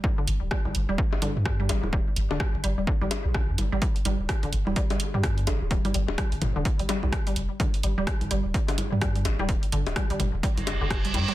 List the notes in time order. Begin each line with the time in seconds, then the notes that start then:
0.04 kick, high conga
0.18 D3
0.28 G1, closed hi-hat
0.42 D1
0.51 G3, kick, cross-stick
0.65 G1 G3, high conga
0.75 G1, closed hi-hat
0.89 D1 G3
0.98 kick
1.13 high bongo
1.22 D3, closed hi-hat, high conga
1.36 G2
1.45 kick, cross-stick
1.60 G3
1.69 G1 G3, closed hi-hat, high bongo
1.83 D1, high conga
1.93 G3, kick
2.16 G1, closed hi-hat
2.30 D1 D3, high bongo
2.40 kick, cross-stick, high conga
2.54 G1
2.64 G1 G3, closed hi-hat
2.78 D1 G3
2.87 kick
3.01 G1 G3, high conga
3.11 closed hi-hat, high bongo
3.25 A#1
3.34 D3, kick, cross-stick
3.49 G2
3.58 G1, closed hi-hat, high conga
3.72 G1 G3
3.82 G3, kick, closed hi-hat
3.96 closed hi-hat
4.05 G1 G3, closed hi-hat, high conga
4.20 D1
4.29 kick, cross-stick, closed hi-hat
4.43 G1 D3, closed hi-hat
4.53 G1, closed hi-hat
4.67 D1 G3, high conga
4.76 G3, kick, closed hi-hat
4.90 G3, closed hi-hat, high bongo
5.00 closed hi-hat
5.14 G2 G3
5.23 kick, cross-stick, closed hi-hat, high conga
5.38 closed hi-hat
5.47 G1 D3, closed hi-hat, high bongo
5.61 D1
5.71 G3, kick, closed hi-hat
5.85 G3, closed hi-hat, high conga
5.94 G1 G3, closed hi-hat
6.08 D1, high bongo
6.18 G3, kick, cross-stick, closed hi-hat
6.32 G1, closed hi-hat
6.42 G1, closed hi-hat, mid tom, high conga
6.56 D1 D3
6.65 kick, closed hi-hat
6.79 G1 G3, closed hi-hat
6.89 G3, closed hi-hat, high bongo
7.03 A#1 G3, high conga
7.13 kick, cross-stick, closed hi-hat
7.27 G3, closed hi-hat
7.36 F1, closed hi-hat
7.60 D3, kick, closed hi-hat, high conga
7.74 closed hi-hat
7.83 G1 G3, closed hi-hat
7.98 D1 G3
8.07 G3, kick, cross-stick, closed hi-hat
8.21 G1, closed hi-hat, high conga
8.31 G1 G3, closed hi-hat
8.45 D1
8.54 kick, closed hi-hat
8.68 D3, closed hi-hat, high bongo
8.78 closed hi-hat, high conga
8.92 G2 G3
9.01 G3, kick, cross-stick, closed hi-hat
9.16 G3, closed hi-hat
9.25 G1, closed hi-hat, high bongo
9.39 D1 G3, high conga
9.49 kick, closed hi-hat
9.63 closed hi-hat
9.72 G1 D3, closed hi-hat
9.87 D1, closed hi-hat, high bongo
9.96 G3, kick, cross-stick, closed hi-hat, high conga
10.10 G1 G3, closed hi-hat
10.20 G1 G3, closed hi-hat, mid tom
10.34 D1
10.43 G3, kick, closed hi-hat, reverse cymbal
10.57 G1, closed hi-hat, high conga
10.67 F1, closed hi-hat, high bongo
10.81 F1 D3
10.90 kick, cross-stick, closed hi-hat
11.05 G3, closed hi-hat
11.14 G2 G3, closed hi-hat, high conga
11.28 G3, closed hi-hat